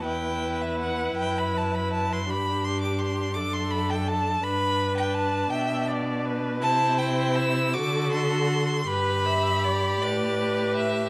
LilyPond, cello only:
\new Staff \with { instrumentName = "Cello" } { \clef bass \time 6/8 \key g \major \tempo 4. = 54 e,4. fis,4. | g,4. fis,4. | g,4. b,4. | c4. d4. |
g,4. a,4. | }